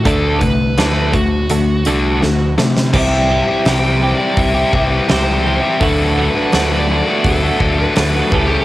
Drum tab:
CC |----------------|x---------------|----------------|
HH |x-x-x-x-x-x-----|----o---o---o---|o---o---o---o---|
SD |----o-------o-oo|----o-------o---|----o-------o---|
BD |o-o---o---------|o-------o-o-----|o-------o-o---o-|